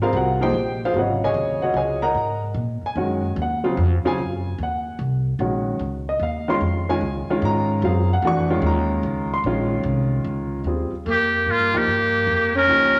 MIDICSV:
0, 0, Header, 1, 6, 480
1, 0, Start_track
1, 0, Tempo, 404585
1, 1118, Time_signature, 3, 2, 24, 8
1, 15420, End_track
2, 0, Start_track
2, 0, Title_t, "Muted trumpet"
2, 0, Program_c, 0, 59
2, 13176, Note_on_c, 0, 67, 82
2, 13651, Note_on_c, 0, 65, 74
2, 13669, Note_off_c, 0, 67, 0
2, 13971, Note_on_c, 0, 67, 81
2, 13989, Note_off_c, 0, 65, 0
2, 14905, Note_off_c, 0, 67, 0
2, 14917, Note_on_c, 0, 70, 90
2, 15420, Note_off_c, 0, 70, 0
2, 15420, End_track
3, 0, Start_track
3, 0, Title_t, "Grand piano"
3, 0, Program_c, 1, 0
3, 19, Note_on_c, 1, 55, 77
3, 20, Note_on_c, 1, 60, 73
3, 20, Note_on_c, 1, 65, 70
3, 27, Note_on_c, 1, 70, 88
3, 37, Note_on_c, 1, 77, 92
3, 38, Note_on_c, 1, 68, 74
3, 41, Note_on_c, 1, 72, 71
3, 174, Note_off_c, 1, 68, 0
3, 174, Note_off_c, 1, 77, 0
3, 176, Note_off_c, 1, 72, 0
3, 194, Note_on_c, 1, 78, 93
3, 203, Note_on_c, 1, 66, 72
3, 456, Note_off_c, 1, 55, 0
3, 456, Note_off_c, 1, 60, 0
3, 456, Note_off_c, 1, 65, 0
3, 459, Note_off_c, 1, 70, 0
3, 480, Note_on_c, 1, 53, 78
3, 484, Note_on_c, 1, 58, 70
3, 485, Note_off_c, 1, 78, 0
3, 490, Note_off_c, 1, 66, 0
3, 491, Note_on_c, 1, 63, 76
3, 491, Note_on_c, 1, 68, 83
3, 499, Note_on_c, 1, 72, 85
3, 503, Note_on_c, 1, 67, 88
3, 505, Note_on_c, 1, 79, 108
3, 624, Note_off_c, 1, 53, 0
3, 626, Note_off_c, 1, 58, 0
3, 629, Note_off_c, 1, 63, 0
3, 629, Note_off_c, 1, 68, 0
3, 935, Note_off_c, 1, 72, 0
3, 937, Note_off_c, 1, 67, 0
3, 938, Note_off_c, 1, 79, 0
3, 1011, Note_on_c, 1, 77, 99
3, 1012, Note_on_c, 1, 72, 84
3, 1018, Note_on_c, 1, 65, 77
3, 1018, Note_on_c, 1, 68, 80
3, 1116, Note_off_c, 1, 65, 0
3, 1132, Note_on_c, 1, 49, 57
3, 1134, Note_on_c, 1, 65, 66
3, 1136, Note_on_c, 1, 48, 54
3, 1136, Note_on_c, 1, 54, 55
3, 1141, Note_off_c, 1, 77, 0
3, 1142, Note_off_c, 1, 72, 0
3, 1145, Note_off_c, 1, 68, 0
3, 1168, Note_on_c, 1, 78, 73
3, 1172, Note_on_c, 1, 66, 61
3, 1176, Note_on_c, 1, 73, 56
3, 1179, Note_on_c, 1, 75, 62
3, 1452, Note_off_c, 1, 78, 0
3, 1454, Note_off_c, 1, 66, 0
3, 1456, Note_off_c, 1, 73, 0
3, 1456, Note_off_c, 1, 75, 0
3, 1473, Note_on_c, 1, 68, 81
3, 1474, Note_on_c, 1, 75, 90
3, 1476, Note_on_c, 1, 80, 103
3, 1483, Note_on_c, 1, 73, 85
3, 1902, Note_off_c, 1, 68, 0
3, 1902, Note_off_c, 1, 75, 0
3, 1904, Note_off_c, 1, 80, 0
3, 1908, Note_off_c, 1, 73, 0
3, 1924, Note_on_c, 1, 78, 87
3, 1935, Note_on_c, 1, 73, 67
3, 1938, Note_on_c, 1, 66, 68
3, 1943, Note_on_c, 1, 75, 69
3, 2077, Note_off_c, 1, 78, 0
3, 2078, Note_off_c, 1, 75, 0
3, 2083, Note_off_c, 1, 73, 0
3, 2084, Note_off_c, 1, 66, 0
3, 2095, Note_on_c, 1, 80, 84
3, 2096, Note_on_c, 1, 75, 66
3, 2108, Note_on_c, 1, 73, 67
3, 2111, Note_on_c, 1, 68, 72
3, 2390, Note_off_c, 1, 75, 0
3, 2395, Note_off_c, 1, 80, 0
3, 2400, Note_on_c, 1, 82, 102
3, 2402, Note_off_c, 1, 73, 0
3, 2403, Note_off_c, 1, 68, 0
3, 2403, Note_on_c, 1, 70, 81
3, 2404, Note_on_c, 1, 78, 83
3, 2407, Note_on_c, 1, 75, 79
3, 2467, Note_off_c, 1, 49, 0
3, 2469, Note_off_c, 1, 48, 0
3, 2469, Note_off_c, 1, 65, 0
3, 2470, Note_off_c, 1, 54, 0
3, 2844, Note_off_c, 1, 82, 0
3, 2846, Note_off_c, 1, 70, 0
3, 2846, Note_off_c, 1, 78, 0
3, 2848, Note_off_c, 1, 75, 0
3, 3393, Note_on_c, 1, 80, 93
3, 3519, Note_on_c, 1, 51, 65
3, 3520, Note_on_c, 1, 56, 64
3, 3525, Note_on_c, 1, 61, 64
3, 3528, Note_on_c, 1, 66, 73
3, 3805, Note_off_c, 1, 51, 0
3, 3805, Note_off_c, 1, 56, 0
3, 3807, Note_off_c, 1, 61, 0
3, 3809, Note_off_c, 1, 66, 0
3, 3972, Note_off_c, 1, 80, 0
3, 4055, Note_on_c, 1, 78, 86
3, 4316, Note_on_c, 1, 54, 74
3, 4319, Note_on_c, 1, 60, 71
3, 4321, Note_on_c, 1, 49, 72
3, 4323, Note_on_c, 1, 65, 86
3, 4461, Note_off_c, 1, 54, 0
3, 4462, Note_off_c, 1, 60, 0
3, 4463, Note_off_c, 1, 49, 0
3, 4464, Note_off_c, 1, 65, 0
3, 4474, Note_off_c, 1, 78, 0
3, 4807, Note_on_c, 1, 49, 82
3, 4812, Note_on_c, 1, 54, 72
3, 4812, Note_on_c, 1, 60, 73
3, 4814, Note_on_c, 1, 65, 94
3, 4829, Note_on_c, 1, 80, 102
3, 4946, Note_off_c, 1, 49, 0
3, 4949, Note_off_c, 1, 54, 0
3, 4949, Note_off_c, 1, 60, 0
3, 4950, Note_off_c, 1, 65, 0
3, 5410, Note_off_c, 1, 80, 0
3, 5492, Note_on_c, 1, 78, 82
3, 5912, Note_off_c, 1, 78, 0
3, 6407, Note_on_c, 1, 56, 55
3, 6411, Note_on_c, 1, 51, 63
3, 6411, Note_on_c, 1, 66, 68
3, 6417, Note_on_c, 1, 61, 57
3, 6881, Note_off_c, 1, 56, 0
3, 6883, Note_off_c, 1, 51, 0
3, 6883, Note_off_c, 1, 66, 0
3, 6886, Note_off_c, 1, 61, 0
3, 7225, Note_on_c, 1, 75, 84
3, 7366, Note_off_c, 1, 75, 0
3, 7389, Note_on_c, 1, 77, 86
3, 7681, Note_off_c, 1, 77, 0
3, 7690, Note_on_c, 1, 51, 83
3, 7694, Note_on_c, 1, 56, 76
3, 7700, Note_on_c, 1, 61, 77
3, 7705, Note_on_c, 1, 65, 88
3, 7712, Note_on_c, 1, 84, 101
3, 7827, Note_off_c, 1, 51, 0
3, 7829, Note_off_c, 1, 56, 0
3, 7832, Note_off_c, 1, 61, 0
3, 7835, Note_off_c, 1, 65, 0
3, 8140, Note_off_c, 1, 84, 0
3, 8176, Note_on_c, 1, 51, 80
3, 8177, Note_on_c, 1, 56, 72
3, 8178, Note_on_c, 1, 61, 74
3, 8182, Note_on_c, 1, 80, 101
3, 8185, Note_on_c, 1, 65, 86
3, 8310, Note_off_c, 1, 51, 0
3, 8310, Note_off_c, 1, 56, 0
3, 8311, Note_off_c, 1, 61, 0
3, 8314, Note_off_c, 1, 65, 0
3, 8663, Note_on_c, 1, 51, 80
3, 8666, Note_on_c, 1, 56, 72
3, 8667, Note_on_c, 1, 65, 89
3, 8674, Note_on_c, 1, 61, 73
3, 8765, Note_off_c, 1, 80, 0
3, 8841, Note_on_c, 1, 82, 110
3, 9257, Note_off_c, 1, 51, 0
3, 9258, Note_off_c, 1, 56, 0
3, 9259, Note_off_c, 1, 65, 0
3, 9262, Note_off_c, 1, 61, 0
3, 9296, Note_on_c, 1, 54, 67
3, 9304, Note_on_c, 1, 65, 62
3, 9305, Note_on_c, 1, 60, 64
3, 9310, Note_on_c, 1, 68, 77
3, 9311, Note_on_c, 1, 77, 91
3, 9568, Note_off_c, 1, 82, 0
3, 9571, Note_off_c, 1, 54, 0
3, 9575, Note_off_c, 1, 60, 0
3, 9575, Note_off_c, 1, 65, 0
3, 9578, Note_off_c, 1, 68, 0
3, 9601, Note_off_c, 1, 77, 0
3, 9647, Note_on_c, 1, 78, 97
3, 9777, Note_off_c, 1, 78, 0
3, 9782, Note_on_c, 1, 57, 76
3, 9783, Note_on_c, 1, 52, 80
3, 9784, Note_on_c, 1, 66, 91
3, 9788, Note_on_c, 1, 62, 70
3, 9815, Note_on_c, 1, 85, 102
3, 10054, Note_off_c, 1, 52, 0
3, 10054, Note_off_c, 1, 57, 0
3, 10055, Note_off_c, 1, 66, 0
3, 10057, Note_off_c, 1, 62, 0
3, 10087, Note_on_c, 1, 51, 83
3, 10090, Note_on_c, 1, 56, 77
3, 10090, Note_on_c, 1, 65, 91
3, 10092, Note_on_c, 1, 61, 71
3, 10232, Note_off_c, 1, 85, 0
3, 10277, Note_on_c, 1, 82, 95
3, 11006, Note_off_c, 1, 82, 0
3, 11076, Note_on_c, 1, 84, 96
3, 11104, Note_off_c, 1, 51, 0
3, 11105, Note_off_c, 1, 56, 0
3, 11105, Note_off_c, 1, 65, 0
3, 11106, Note_off_c, 1, 61, 0
3, 11224, Note_on_c, 1, 61, 71
3, 11227, Note_on_c, 1, 51, 73
3, 11230, Note_on_c, 1, 56, 64
3, 11234, Note_on_c, 1, 65, 82
3, 11652, Note_off_c, 1, 84, 0
3, 12552, Note_off_c, 1, 61, 0
3, 12554, Note_off_c, 1, 51, 0
3, 12555, Note_off_c, 1, 56, 0
3, 12557, Note_off_c, 1, 65, 0
3, 12655, Note_on_c, 1, 55, 53
3, 12655, Note_on_c, 1, 65, 51
3, 12655, Note_on_c, 1, 68, 57
3, 12657, Note_on_c, 1, 60, 48
3, 12931, Note_off_c, 1, 55, 0
3, 12931, Note_off_c, 1, 65, 0
3, 12931, Note_off_c, 1, 68, 0
3, 12932, Note_off_c, 1, 60, 0
3, 13926, Note_on_c, 1, 53, 69
3, 13927, Note_on_c, 1, 63, 58
3, 13930, Note_on_c, 1, 58, 56
3, 13930, Note_on_c, 1, 67, 72
3, 14066, Note_off_c, 1, 53, 0
3, 14067, Note_off_c, 1, 63, 0
3, 14068, Note_off_c, 1, 58, 0
3, 14068, Note_off_c, 1, 67, 0
3, 15050, Note_on_c, 1, 53, 58
3, 15058, Note_on_c, 1, 58, 53
3, 15058, Note_on_c, 1, 63, 53
3, 15064, Note_on_c, 1, 67, 67
3, 15332, Note_off_c, 1, 53, 0
3, 15335, Note_off_c, 1, 58, 0
3, 15336, Note_off_c, 1, 63, 0
3, 15338, Note_off_c, 1, 67, 0
3, 15420, End_track
4, 0, Start_track
4, 0, Title_t, "Alto saxophone"
4, 0, Program_c, 2, 65
4, 13125, Note_on_c, 2, 58, 67
4, 13592, Note_off_c, 2, 58, 0
4, 13592, Note_on_c, 2, 58, 63
4, 13917, Note_off_c, 2, 58, 0
4, 13917, Note_on_c, 2, 58, 70
4, 14878, Note_off_c, 2, 58, 0
4, 14890, Note_on_c, 2, 61, 85
4, 15420, Note_off_c, 2, 61, 0
4, 15420, End_track
5, 0, Start_track
5, 0, Title_t, "Upright bass"
5, 0, Program_c, 3, 32
5, 0, Note_on_c, 3, 32, 97
5, 139, Note_off_c, 3, 32, 0
5, 153, Note_on_c, 3, 36, 99
5, 621, Note_off_c, 3, 36, 0
5, 637, Note_on_c, 3, 34, 86
5, 1103, Note_off_c, 3, 34, 0
5, 1114, Note_on_c, 3, 32, 85
5, 1581, Note_off_c, 3, 32, 0
5, 1591, Note_on_c, 3, 39, 99
5, 2055, Note_off_c, 3, 39, 0
5, 2062, Note_on_c, 3, 37, 83
5, 2535, Note_off_c, 3, 37, 0
5, 2545, Note_on_c, 3, 44, 82
5, 3012, Note_off_c, 3, 44, 0
5, 3020, Note_on_c, 3, 46, 93
5, 3324, Note_off_c, 3, 46, 0
5, 3506, Note_on_c, 3, 42, 88
5, 3977, Note_off_c, 3, 42, 0
5, 3989, Note_on_c, 3, 39, 94
5, 4458, Note_off_c, 3, 39, 0
5, 4477, Note_on_c, 3, 41, 101
5, 4772, Note_off_c, 3, 41, 0
5, 4960, Note_on_c, 3, 42, 84
5, 5424, Note_off_c, 3, 42, 0
5, 5439, Note_on_c, 3, 39, 85
5, 5903, Note_off_c, 3, 39, 0
5, 5918, Note_on_c, 3, 36, 94
5, 6382, Note_off_c, 3, 36, 0
5, 6394, Note_on_c, 3, 34, 92
5, 6860, Note_off_c, 3, 34, 0
5, 6874, Note_on_c, 3, 37, 86
5, 7340, Note_off_c, 3, 37, 0
5, 7350, Note_on_c, 3, 39, 91
5, 7817, Note_off_c, 3, 39, 0
5, 7837, Note_on_c, 3, 41, 88
5, 8301, Note_off_c, 3, 41, 0
5, 8315, Note_on_c, 3, 37, 89
5, 8610, Note_off_c, 3, 37, 0
5, 8802, Note_on_c, 3, 44, 100
5, 9263, Note_off_c, 3, 44, 0
5, 9278, Note_on_c, 3, 42, 97
5, 9741, Note_off_c, 3, 42, 0
5, 9755, Note_on_c, 3, 41, 91
5, 10217, Note_off_c, 3, 41, 0
5, 10224, Note_on_c, 3, 39, 102
5, 10694, Note_off_c, 3, 39, 0
5, 10715, Note_on_c, 3, 37, 91
5, 11179, Note_off_c, 3, 37, 0
5, 11197, Note_on_c, 3, 34, 96
5, 11661, Note_off_c, 3, 34, 0
5, 11668, Note_on_c, 3, 36, 96
5, 12136, Note_off_c, 3, 36, 0
5, 12154, Note_on_c, 3, 37, 95
5, 12620, Note_off_c, 3, 37, 0
5, 12627, Note_on_c, 3, 39, 79
5, 12926, Note_off_c, 3, 39, 0
5, 13122, Note_on_c, 3, 41, 89
5, 13585, Note_off_c, 3, 41, 0
5, 13601, Note_on_c, 3, 44, 78
5, 13766, Note_off_c, 3, 44, 0
5, 13766, Note_on_c, 3, 43, 54
5, 13918, Note_off_c, 3, 43, 0
5, 13925, Note_on_c, 3, 39, 62
5, 14070, Note_off_c, 3, 39, 0
5, 14082, Note_on_c, 3, 43, 79
5, 14546, Note_off_c, 3, 43, 0
5, 14557, Note_on_c, 3, 41, 92
5, 15024, Note_off_c, 3, 41, 0
5, 15036, Note_on_c, 3, 37, 84
5, 15420, Note_off_c, 3, 37, 0
5, 15420, End_track
6, 0, Start_track
6, 0, Title_t, "Muted upright bass strokes"
6, 3350, Note_on_c, 9, 29, 41
6, 3469, Note_off_c, 9, 29, 0
6, 4798, Note_on_c, 9, 29, 45
6, 4917, Note_off_c, 9, 29, 0
6, 8635, Note_on_c, 9, 29, 41
6, 8754, Note_off_c, 9, 29, 0
6, 12948, Note_on_c, 9, 29, 38
6, 13067, Note_off_c, 9, 29, 0
6, 15420, End_track
0, 0, End_of_file